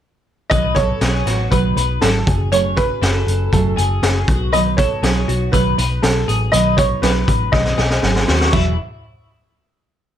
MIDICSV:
0, 0, Header, 1, 6, 480
1, 0, Start_track
1, 0, Tempo, 501253
1, 492, Time_signature, 4, 2, 24, 8
1, 9746, End_track
2, 0, Start_track
2, 0, Title_t, "Upright piano"
2, 0, Program_c, 0, 0
2, 476, Note_on_c, 0, 75, 100
2, 716, Note_on_c, 0, 73, 109
2, 732, Note_off_c, 0, 75, 0
2, 1409, Note_off_c, 0, 73, 0
2, 1442, Note_on_c, 0, 71, 79
2, 1896, Note_off_c, 0, 71, 0
2, 1927, Note_on_c, 0, 69, 87
2, 2267, Note_off_c, 0, 69, 0
2, 2411, Note_on_c, 0, 73, 94
2, 2466, Note_off_c, 0, 73, 0
2, 2649, Note_on_c, 0, 71, 104
2, 3377, Note_on_c, 0, 69, 82
2, 3395, Note_off_c, 0, 71, 0
2, 3856, Note_on_c, 0, 68, 88
2, 3871, Note_off_c, 0, 69, 0
2, 4191, Note_off_c, 0, 68, 0
2, 4335, Note_on_c, 0, 75, 99
2, 4389, Note_off_c, 0, 75, 0
2, 4567, Note_on_c, 0, 73, 90
2, 5284, Note_on_c, 0, 71, 83
2, 5312, Note_off_c, 0, 73, 0
2, 5768, Note_on_c, 0, 69, 83
2, 5783, Note_off_c, 0, 71, 0
2, 6104, Note_off_c, 0, 69, 0
2, 6241, Note_on_c, 0, 75, 99
2, 6469, Note_off_c, 0, 75, 0
2, 6482, Note_on_c, 0, 73, 88
2, 6537, Note_off_c, 0, 73, 0
2, 6722, Note_on_c, 0, 71, 83
2, 7172, Note_off_c, 0, 71, 0
2, 7201, Note_on_c, 0, 75, 85
2, 7651, Note_off_c, 0, 75, 0
2, 8163, Note_on_c, 0, 76, 77
2, 8389, Note_off_c, 0, 76, 0
2, 9746, End_track
3, 0, Start_track
3, 0, Title_t, "Clean electric guitar"
3, 0, Program_c, 1, 27
3, 487, Note_on_c, 1, 71, 108
3, 732, Note_off_c, 1, 71, 0
3, 732, Note_on_c, 1, 69, 75
3, 969, Note_off_c, 1, 69, 0
3, 973, Note_on_c, 1, 68, 76
3, 1214, Note_off_c, 1, 68, 0
3, 1217, Note_on_c, 1, 66, 66
3, 1453, Note_on_c, 1, 71, 78
3, 1457, Note_off_c, 1, 66, 0
3, 1682, Note_off_c, 1, 71, 0
3, 1693, Note_on_c, 1, 71, 69
3, 1930, Note_off_c, 1, 71, 0
3, 1934, Note_on_c, 1, 69, 75
3, 2175, Note_off_c, 1, 69, 0
3, 2175, Note_on_c, 1, 68, 72
3, 2414, Note_off_c, 1, 68, 0
3, 2418, Note_on_c, 1, 73, 110
3, 2658, Note_off_c, 1, 73, 0
3, 2658, Note_on_c, 1, 71, 68
3, 2892, Note_off_c, 1, 71, 0
3, 2895, Note_on_c, 1, 69, 76
3, 3578, Note_off_c, 1, 69, 0
3, 3613, Note_on_c, 1, 68, 70
3, 4096, Note_off_c, 1, 68, 0
3, 4096, Note_on_c, 1, 66, 77
3, 4331, Note_off_c, 1, 66, 0
3, 4335, Note_on_c, 1, 71, 105
3, 4574, Note_off_c, 1, 71, 0
3, 4578, Note_on_c, 1, 69, 80
3, 4814, Note_off_c, 1, 69, 0
3, 4817, Note_on_c, 1, 68, 76
3, 5056, Note_off_c, 1, 68, 0
3, 5056, Note_on_c, 1, 66, 70
3, 5295, Note_off_c, 1, 66, 0
3, 5296, Note_on_c, 1, 71, 80
3, 5525, Note_off_c, 1, 71, 0
3, 5537, Note_on_c, 1, 71, 69
3, 5775, Note_off_c, 1, 71, 0
3, 5775, Note_on_c, 1, 69, 82
3, 6011, Note_off_c, 1, 69, 0
3, 6015, Note_on_c, 1, 68, 83
3, 6248, Note_off_c, 1, 68, 0
3, 6252, Note_on_c, 1, 71, 108
3, 6489, Note_off_c, 1, 71, 0
3, 6493, Note_on_c, 1, 73, 68
3, 6728, Note_off_c, 1, 73, 0
3, 6732, Note_on_c, 1, 71, 73
3, 7412, Note_off_c, 1, 71, 0
3, 7449, Note_on_c, 1, 68, 79
3, 7900, Note_off_c, 1, 68, 0
3, 7933, Note_on_c, 1, 66, 80
3, 8167, Note_off_c, 1, 66, 0
3, 8171, Note_on_c, 1, 64, 87
3, 8393, Note_off_c, 1, 64, 0
3, 9746, End_track
4, 0, Start_track
4, 0, Title_t, "Steel-string acoustic guitar"
4, 0, Program_c, 2, 25
4, 483, Note_on_c, 2, 47, 70
4, 484, Note_on_c, 2, 51, 78
4, 490, Note_on_c, 2, 54, 83
4, 494, Note_on_c, 2, 59, 81
4, 499, Note_on_c, 2, 63, 79
4, 505, Note_on_c, 2, 71, 78
4, 703, Note_off_c, 2, 71, 0
4, 715, Note_on_c, 2, 71, 54
4, 718, Note_off_c, 2, 63, 0
4, 728, Note_off_c, 2, 47, 0
4, 728, Note_off_c, 2, 59, 0
4, 729, Note_off_c, 2, 51, 0
4, 730, Note_on_c, 2, 63, 52
4, 732, Note_off_c, 2, 54, 0
4, 740, Note_on_c, 2, 59, 43
4, 750, Note_on_c, 2, 54, 44
4, 945, Note_off_c, 2, 54, 0
4, 957, Note_on_c, 2, 54, 50
4, 959, Note_off_c, 2, 59, 0
4, 965, Note_off_c, 2, 71, 0
4, 971, Note_on_c, 2, 59, 59
4, 972, Note_off_c, 2, 63, 0
4, 982, Note_on_c, 2, 63, 59
4, 991, Note_on_c, 2, 71, 66
4, 1188, Note_off_c, 2, 71, 0
4, 1199, Note_off_c, 2, 63, 0
4, 1200, Note_on_c, 2, 71, 49
4, 1206, Note_off_c, 2, 54, 0
4, 1211, Note_on_c, 2, 63, 47
4, 1213, Note_off_c, 2, 59, 0
4, 1224, Note_on_c, 2, 59, 44
4, 1233, Note_on_c, 2, 54, 43
4, 1438, Note_off_c, 2, 54, 0
4, 1442, Note_on_c, 2, 47, 66
4, 1445, Note_off_c, 2, 59, 0
4, 1448, Note_off_c, 2, 71, 0
4, 1448, Note_on_c, 2, 51, 82
4, 1449, Note_off_c, 2, 63, 0
4, 1450, Note_on_c, 2, 54, 86
4, 1457, Note_on_c, 2, 59, 76
4, 1461, Note_on_c, 2, 63, 74
4, 1464, Note_on_c, 2, 71, 80
4, 1670, Note_off_c, 2, 71, 0
4, 1682, Note_on_c, 2, 71, 55
4, 1684, Note_off_c, 2, 63, 0
4, 1689, Note_off_c, 2, 47, 0
4, 1692, Note_off_c, 2, 51, 0
4, 1693, Note_off_c, 2, 54, 0
4, 1693, Note_off_c, 2, 59, 0
4, 1695, Note_on_c, 2, 63, 49
4, 1704, Note_on_c, 2, 59, 46
4, 1714, Note_on_c, 2, 54, 48
4, 1906, Note_off_c, 2, 54, 0
4, 1917, Note_on_c, 2, 54, 64
4, 1922, Note_off_c, 2, 59, 0
4, 1929, Note_off_c, 2, 71, 0
4, 1931, Note_off_c, 2, 63, 0
4, 1934, Note_on_c, 2, 59, 58
4, 1942, Note_on_c, 2, 63, 60
4, 1952, Note_on_c, 2, 71, 62
4, 2153, Note_off_c, 2, 71, 0
4, 2157, Note_on_c, 2, 68, 46
4, 2167, Note_off_c, 2, 54, 0
4, 2172, Note_off_c, 2, 63, 0
4, 2175, Note_on_c, 2, 66, 48
4, 2176, Note_off_c, 2, 59, 0
4, 2192, Note_on_c, 2, 61, 41
4, 2404, Note_off_c, 2, 61, 0
4, 2404, Note_on_c, 2, 54, 73
4, 2407, Note_off_c, 2, 68, 0
4, 2408, Note_off_c, 2, 66, 0
4, 2409, Note_on_c, 2, 57, 82
4, 2415, Note_on_c, 2, 61, 75
4, 2420, Note_on_c, 2, 66, 87
4, 2424, Note_on_c, 2, 68, 87
4, 2630, Note_off_c, 2, 68, 0
4, 2641, Note_on_c, 2, 68, 52
4, 2647, Note_off_c, 2, 66, 0
4, 2651, Note_off_c, 2, 54, 0
4, 2653, Note_off_c, 2, 57, 0
4, 2656, Note_off_c, 2, 61, 0
4, 2658, Note_on_c, 2, 66, 44
4, 2673, Note_on_c, 2, 61, 43
4, 2882, Note_on_c, 2, 57, 57
4, 2884, Note_off_c, 2, 61, 0
4, 2889, Note_off_c, 2, 68, 0
4, 2895, Note_off_c, 2, 66, 0
4, 2896, Note_on_c, 2, 61, 57
4, 2906, Note_on_c, 2, 66, 61
4, 2916, Note_on_c, 2, 68, 68
4, 3117, Note_off_c, 2, 68, 0
4, 3129, Note_on_c, 2, 68, 52
4, 3130, Note_off_c, 2, 57, 0
4, 3137, Note_off_c, 2, 61, 0
4, 3137, Note_off_c, 2, 66, 0
4, 3149, Note_on_c, 2, 66, 47
4, 3162, Note_on_c, 2, 61, 45
4, 3367, Note_on_c, 2, 54, 73
4, 3368, Note_off_c, 2, 61, 0
4, 3371, Note_on_c, 2, 57, 77
4, 3372, Note_off_c, 2, 66, 0
4, 3373, Note_off_c, 2, 68, 0
4, 3380, Note_on_c, 2, 61, 79
4, 3384, Note_on_c, 2, 66, 84
4, 3389, Note_on_c, 2, 68, 86
4, 3591, Note_off_c, 2, 68, 0
4, 3603, Note_on_c, 2, 68, 57
4, 3611, Note_off_c, 2, 66, 0
4, 3612, Note_off_c, 2, 54, 0
4, 3614, Note_off_c, 2, 57, 0
4, 3618, Note_off_c, 2, 61, 0
4, 3622, Note_on_c, 2, 66, 49
4, 3634, Note_on_c, 2, 61, 46
4, 3841, Note_on_c, 2, 57, 60
4, 3842, Note_off_c, 2, 61, 0
4, 3850, Note_off_c, 2, 68, 0
4, 3853, Note_off_c, 2, 66, 0
4, 3854, Note_on_c, 2, 61, 62
4, 3865, Note_on_c, 2, 66, 61
4, 3874, Note_on_c, 2, 68, 62
4, 4082, Note_off_c, 2, 68, 0
4, 4086, Note_on_c, 2, 71, 49
4, 4089, Note_off_c, 2, 57, 0
4, 4095, Note_off_c, 2, 61, 0
4, 4096, Note_off_c, 2, 66, 0
4, 4100, Note_on_c, 2, 63, 45
4, 4111, Note_on_c, 2, 59, 44
4, 4121, Note_on_c, 2, 54, 39
4, 4330, Note_off_c, 2, 54, 0
4, 4331, Note_off_c, 2, 71, 0
4, 4332, Note_on_c, 2, 47, 77
4, 4334, Note_off_c, 2, 59, 0
4, 4334, Note_on_c, 2, 51, 82
4, 4338, Note_off_c, 2, 63, 0
4, 4342, Note_on_c, 2, 54, 82
4, 4345, Note_on_c, 2, 59, 78
4, 4350, Note_on_c, 2, 63, 80
4, 4353, Note_on_c, 2, 71, 82
4, 4556, Note_off_c, 2, 71, 0
4, 4567, Note_on_c, 2, 71, 54
4, 4569, Note_off_c, 2, 63, 0
4, 4574, Note_off_c, 2, 47, 0
4, 4575, Note_off_c, 2, 51, 0
4, 4579, Note_off_c, 2, 54, 0
4, 4580, Note_off_c, 2, 59, 0
4, 4580, Note_on_c, 2, 63, 49
4, 4592, Note_on_c, 2, 59, 44
4, 4601, Note_on_c, 2, 54, 46
4, 4800, Note_off_c, 2, 54, 0
4, 4811, Note_off_c, 2, 71, 0
4, 4811, Note_on_c, 2, 54, 62
4, 4813, Note_off_c, 2, 59, 0
4, 4818, Note_off_c, 2, 63, 0
4, 4824, Note_on_c, 2, 59, 62
4, 4833, Note_on_c, 2, 63, 71
4, 4842, Note_on_c, 2, 71, 63
4, 5035, Note_off_c, 2, 71, 0
4, 5044, Note_off_c, 2, 63, 0
4, 5046, Note_on_c, 2, 71, 53
4, 5053, Note_off_c, 2, 54, 0
4, 5055, Note_off_c, 2, 59, 0
4, 5055, Note_on_c, 2, 63, 54
4, 5066, Note_on_c, 2, 59, 45
4, 5077, Note_on_c, 2, 54, 44
4, 5279, Note_off_c, 2, 54, 0
4, 5279, Note_on_c, 2, 47, 78
4, 5282, Note_off_c, 2, 59, 0
4, 5286, Note_off_c, 2, 63, 0
4, 5286, Note_on_c, 2, 51, 85
4, 5290, Note_off_c, 2, 71, 0
4, 5291, Note_on_c, 2, 54, 86
4, 5293, Note_on_c, 2, 59, 83
4, 5297, Note_on_c, 2, 63, 88
4, 5301, Note_on_c, 2, 71, 91
4, 5509, Note_off_c, 2, 71, 0
4, 5520, Note_off_c, 2, 63, 0
4, 5520, Note_on_c, 2, 71, 57
4, 5526, Note_off_c, 2, 47, 0
4, 5530, Note_off_c, 2, 51, 0
4, 5531, Note_off_c, 2, 59, 0
4, 5532, Note_off_c, 2, 54, 0
4, 5532, Note_on_c, 2, 63, 54
4, 5543, Note_on_c, 2, 59, 49
4, 5551, Note_on_c, 2, 54, 42
4, 5748, Note_off_c, 2, 54, 0
4, 5759, Note_off_c, 2, 59, 0
4, 5760, Note_on_c, 2, 54, 55
4, 5767, Note_off_c, 2, 71, 0
4, 5771, Note_on_c, 2, 59, 57
4, 5772, Note_off_c, 2, 63, 0
4, 5782, Note_on_c, 2, 63, 63
4, 5789, Note_on_c, 2, 71, 62
4, 5987, Note_off_c, 2, 71, 0
4, 5998, Note_on_c, 2, 71, 50
4, 6001, Note_off_c, 2, 63, 0
4, 6006, Note_off_c, 2, 54, 0
4, 6012, Note_off_c, 2, 59, 0
4, 6012, Note_on_c, 2, 63, 45
4, 6021, Note_on_c, 2, 59, 45
4, 6030, Note_on_c, 2, 54, 42
4, 6242, Note_off_c, 2, 54, 0
4, 6243, Note_on_c, 2, 47, 78
4, 6245, Note_off_c, 2, 71, 0
4, 6248, Note_off_c, 2, 59, 0
4, 6248, Note_off_c, 2, 63, 0
4, 6248, Note_on_c, 2, 51, 77
4, 6254, Note_on_c, 2, 54, 90
4, 6259, Note_on_c, 2, 59, 83
4, 6259, Note_on_c, 2, 63, 87
4, 6265, Note_on_c, 2, 71, 80
4, 6470, Note_off_c, 2, 71, 0
4, 6482, Note_on_c, 2, 71, 52
4, 6483, Note_off_c, 2, 63, 0
4, 6487, Note_off_c, 2, 47, 0
4, 6490, Note_off_c, 2, 51, 0
4, 6493, Note_off_c, 2, 54, 0
4, 6495, Note_off_c, 2, 59, 0
4, 6495, Note_on_c, 2, 63, 53
4, 6506, Note_on_c, 2, 59, 47
4, 6517, Note_on_c, 2, 54, 43
4, 6707, Note_off_c, 2, 54, 0
4, 6718, Note_off_c, 2, 59, 0
4, 6718, Note_on_c, 2, 54, 64
4, 6726, Note_off_c, 2, 71, 0
4, 6728, Note_off_c, 2, 63, 0
4, 6730, Note_on_c, 2, 59, 61
4, 6740, Note_on_c, 2, 63, 59
4, 6751, Note_on_c, 2, 71, 73
4, 6948, Note_off_c, 2, 71, 0
4, 6959, Note_off_c, 2, 63, 0
4, 6959, Note_on_c, 2, 71, 54
4, 6964, Note_off_c, 2, 54, 0
4, 6970, Note_off_c, 2, 59, 0
4, 6970, Note_on_c, 2, 63, 53
4, 6983, Note_on_c, 2, 59, 51
4, 6992, Note_on_c, 2, 54, 45
4, 7196, Note_off_c, 2, 54, 0
4, 7200, Note_on_c, 2, 47, 82
4, 7201, Note_off_c, 2, 59, 0
4, 7204, Note_on_c, 2, 51, 77
4, 7205, Note_off_c, 2, 71, 0
4, 7206, Note_off_c, 2, 63, 0
4, 7207, Note_on_c, 2, 54, 81
4, 7213, Note_on_c, 2, 59, 92
4, 7217, Note_on_c, 2, 63, 84
4, 7221, Note_on_c, 2, 71, 84
4, 7421, Note_off_c, 2, 71, 0
4, 7432, Note_on_c, 2, 71, 52
4, 7436, Note_off_c, 2, 63, 0
4, 7445, Note_off_c, 2, 47, 0
4, 7445, Note_off_c, 2, 59, 0
4, 7447, Note_off_c, 2, 51, 0
4, 7448, Note_on_c, 2, 63, 57
4, 7449, Note_off_c, 2, 54, 0
4, 7456, Note_on_c, 2, 59, 47
4, 7469, Note_on_c, 2, 54, 44
4, 7662, Note_off_c, 2, 54, 0
4, 7672, Note_off_c, 2, 59, 0
4, 7674, Note_on_c, 2, 54, 57
4, 7681, Note_off_c, 2, 71, 0
4, 7683, Note_off_c, 2, 63, 0
4, 7683, Note_on_c, 2, 59, 56
4, 7695, Note_on_c, 2, 63, 65
4, 7704, Note_on_c, 2, 71, 68
4, 7898, Note_off_c, 2, 71, 0
4, 7909, Note_on_c, 2, 71, 52
4, 7912, Note_off_c, 2, 63, 0
4, 7921, Note_off_c, 2, 59, 0
4, 7922, Note_off_c, 2, 54, 0
4, 7924, Note_on_c, 2, 63, 54
4, 7933, Note_on_c, 2, 59, 50
4, 7944, Note_on_c, 2, 54, 43
4, 8153, Note_off_c, 2, 54, 0
4, 8157, Note_on_c, 2, 52, 84
4, 8159, Note_off_c, 2, 71, 0
4, 8160, Note_off_c, 2, 59, 0
4, 8164, Note_on_c, 2, 54, 75
4, 8167, Note_off_c, 2, 63, 0
4, 8171, Note_on_c, 2, 59, 84
4, 8177, Note_on_c, 2, 66, 93
4, 8181, Note_on_c, 2, 68, 88
4, 8355, Note_off_c, 2, 52, 0
4, 8359, Note_off_c, 2, 54, 0
4, 8362, Note_off_c, 2, 59, 0
4, 8365, Note_off_c, 2, 66, 0
4, 8367, Note_off_c, 2, 68, 0
4, 9746, End_track
5, 0, Start_track
5, 0, Title_t, "Picked electric bass"
5, 0, Program_c, 3, 34
5, 491, Note_on_c, 3, 35, 93
5, 886, Note_off_c, 3, 35, 0
5, 970, Note_on_c, 3, 35, 83
5, 1169, Note_off_c, 3, 35, 0
5, 1209, Note_on_c, 3, 33, 83
5, 1409, Note_off_c, 3, 33, 0
5, 1452, Note_on_c, 3, 35, 99
5, 1651, Note_off_c, 3, 35, 0
5, 1688, Note_on_c, 3, 35, 102
5, 1889, Note_off_c, 3, 35, 0
5, 1933, Note_on_c, 3, 32, 78
5, 2132, Note_off_c, 3, 32, 0
5, 2173, Note_on_c, 3, 30, 96
5, 2766, Note_off_c, 3, 30, 0
5, 2892, Note_on_c, 3, 30, 97
5, 3091, Note_off_c, 3, 30, 0
5, 3130, Note_on_c, 3, 30, 88
5, 3330, Note_off_c, 3, 30, 0
5, 3376, Note_on_c, 3, 30, 93
5, 3573, Note_off_c, 3, 30, 0
5, 3619, Note_on_c, 3, 30, 93
5, 3815, Note_off_c, 3, 30, 0
5, 3853, Note_on_c, 3, 30, 83
5, 4051, Note_off_c, 3, 30, 0
5, 4098, Note_on_c, 3, 35, 99
5, 4687, Note_off_c, 3, 35, 0
5, 4814, Note_on_c, 3, 35, 89
5, 5011, Note_off_c, 3, 35, 0
5, 5055, Note_on_c, 3, 35, 84
5, 5252, Note_off_c, 3, 35, 0
5, 5296, Note_on_c, 3, 35, 87
5, 5492, Note_off_c, 3, 35, 0
5, 5537, Note_on_c, 3, 35, 98
5, 5732, Note_off_c, 3, 35, 0
5, 5772, Note_on_c, 3, 35, 92
5, 5969, Note_off_c, 3, 35, 0
5, 6014, Note_on_c, 3, 33, 91
5, 6210, Note_off_c, 3, 33, 0
5, 6251, Note_on_c, 3, 35, 88
5, 6644, Note_off_c, 3, 35, 0
5, 6727, Note_on_c, 3, 35, 87
5, 6925, Note_off_c, 3, 35, 0
5, 6969, Note_on_c, 3, 33, 83
5, 7166, Note_off_c, 3, 33, 0
5, 7207, Note_on_c, 3, 35, 102
5, 7405, Note_off_c, 3, 35, 0
5, 7449, Note_on_c, 3, 35, 96
5, 7646, Note_off_c, 3, 35, 0
5, 7689, Note_on_c, 3, 32, 96
5, 7886, Note_off_c, 3, 32, 0
5, 7933, Note_on_c, 3, 39, 89
5, 8128, Note_off_c, 3, 39, 0
5, 8170, Note_on_c, 3, 28, 85
5, 8393, Note_off_c, 3, 28, 0
5, 9746, End_track
6, 0, Start_track
6, 0, Title_t, "Drums"
6, 490, Note_on_c, 9, 36, 109
6, 491, Note_on_c, 9, 42, 83
6, 586, Note_off_c, 9, 36, 0
6, 587, Note_off_c, 9, 42, 0
6, 729, Note_on_c, 9, 36, 88
6, 729, Note_on_c, 9, 42, 75
6, 825, Note_off_c, 9, 36, 0
6, 825, Note_off_c, 9, 42, 0
6, 966, Note_on_c, 9, 42, 69
6, 970, Note_on_c, 9, 38, 85
6, 1062, Note_off_c, 9, 42, 0
6, 1066, Note_off_c, 9, 38, 0
6, 1207, Note_on_c, 9, 38, 37
6, 1213, Note_on_c, 9, 42, 61
6, 1302, Note_off_c, 9, 38, 0
6, 1308, Note_off_c, 9, 42, 0
6, 1452, Note_on_c, 9, 36, 66
6, 1453, Note_on_c, 9, 42, 75
6, 1548, Note_off_c, 9, 36, 0
6, 1549, Note_off_c, 9, 42, 0
6, 1696, Note_on_c, 9, 42, 67
6, 1792, Note_off_c, 9, 42, 0
6, 1932, Note_on_c, 9, 38, 103
6, 1932, Note_on_c, 9, 42, 86
6, 2027, Note_off_c, 9, 38, 0
6, 2028, Note_off_c, 9, 42, 0
6, 2175, Note_on_c, 9, 36, 102
6, 2180, Note_on_c, 9, 42, 65
6, 2270, Note_off_c, 9, 36, 0
6, 2275, Note_off_c, 9, 42, 0
6, 2414, Note_on_c, 9, 42, 82
6, 2510, Note_off_c, 9, 42, 0
6, 2655, Note_on_c, 9, 36, 90
6, 2656, Note_on_c, 9, 42, 74
6, 2751, Note_off_c, 9, 36, 0
6, 2752, Note_off_c, 9, 42, 0
6, 2896, Note_on_c, 9, 42, 74
6, 2900, Note_on_c, 9, 38, 93
6, 2992, Note_off_c, 9, 42, 0
6, 2995, Note_off_c, 9, 38, 0
6, 3140, Note_on_c, 9, 42, 68
6, 3236, Note_off_c, 9, 42, 0
6, 3377, Note_on_c, 9, 36, 68
6, 3379, Note_on_c, 9, 42, 70
6, 3473, Note_off_c, 9, 36, 0
6, 3475, Note_off_c, 9, 42, 0
6, 3621, Note_on_c, 9, 42, 67
6, 3717, Note_off_c, 9, 42, 0
6, 3859, Note_on_c, 9, 38, 101
6, 3860, Note_on_c, 9, 42, 97
6, 3955, Note_off_c, 9, 38, 0
6, 3955, Note_off_c, 9, 42, 0
6, 4098, Note_on_c, 9, 36, 106
6, 4105, Note_on_c, 9, 42, 67
6, 4194, Note_off_c, 9, 36, 0
6, 4201, Note_off_c, 9, 42, 0
6, 4339, Note_on_c, 9, 42, 85
6, 4435, Note_off_c, 9, 42, 0
6, 4578, Note_on_c, 9, 36, 88
6, 4581, Note_on_c, 9, 42, 77
6, 4673, Note_off_c, 9, 36, 0
6, 4677, Note_off_c, 9, 42, 0
6, 4818, Note_on_c, 9, 42, 71
6, 4822, Note_on_c, 9, 38, 89
6, 4914, Note_off_c, 9, 42, 0
6, 4918, Note_off_c, 9, 38, 0
6, 5063, Note_on_c, 9, 42, 65
6, 5159, Note_off_c, 9, 42, 0
6, 5296, Note_on_c, 9, 36, 71
6, 5299, Note_on_c, 9, 42, 71
6, 5391, Note_off_c, 9, 36, 0
6, 5395, Note_off_c, 9, 42, 0
6, 5538, Note_on_c, 9, 42, 74
6, 5633, Note_off_c, 9, 42, 0
6, 5776, Note_on_c, 9, 38, 109
6, 5777, Note_on_c, 9, 42, 88
6, 5872, Note_off_c, 9, 38, 0
6, 5872, Note_off_c, 9, 42, 0
6, 6021, Note_on_c, 9, 42, 69
6, 6116, Note_off_c, 9, 42, 0
6, 6253, Note_on_c, 9, 42, 85
6, 6349, Note_off_c, 9, 42, 0
6, 6491, Note_on_c, 9, 36, 89
6, 6493, Note_on_c, 9, 42, 84
6, 6587, Note_off_c, 9, 36, 0
6, 6589, Note_off_c, 9, 42, 0
6, 6729, Note_on_c, 9, 42, 80
6, 6733, Note_on_c, 9, 38, 93
6, 6825, Note_off_c, 9, 42, 0
6, 6829, Note_off_c, 9, 38, 0
6, 6971, Note_on_c, 9, 36, 90
6, 6974, Note_on_c, 9, 42, 69
6, 7067, Note_off_c, 9, 36, 0
6, 7070, Note_off_c, 9, 42, 0
6, 7209, Note_on_c, 9, 36, 78
6, 7211, Note_on_c, 9, 38, 54
6, 7304, Note_off_c, 9, 36, 0
6, 7307, Note_off_c, 9, 38, 0
6, 7327, Note_on_c, 9, 38, 49
6, 7423, Note_off_c, 9, 38, 0
6, 7450, Note_on_c, 9, 38, 65
6, 7545, Note_off_c, 9, 38, 0
6, 7568, Note_on_c, 9, 38, 63
6, 7663, Note_off_c, 9, 38, 0
6, 7688, Note_on_c, 9, 38, 73
6, 7784, Note_off_c, 9, 38, 0
6, 7811, Note_on_c, 9, 38, 78
6, 7907, Note_off_c, 9, 38, 0
6, 7928, Note_on_c, 9, 38, 97
6, 8024, Note_off_c, 9, 38, 0
6, 8052, Note_on_c, 9, 38, 90
6, 8148, Note_off_c, 9, 38, 0
6, 8168, Note_on_c, 9, 49, 84
6, 8169, Note_on_c, 9, 36, 100
6, 8264, Note_off_c, 9, 49, 0
6, 8265, Note_off_c, 9, 36, 0
6, 9746, End_track
0, 0, End_of_file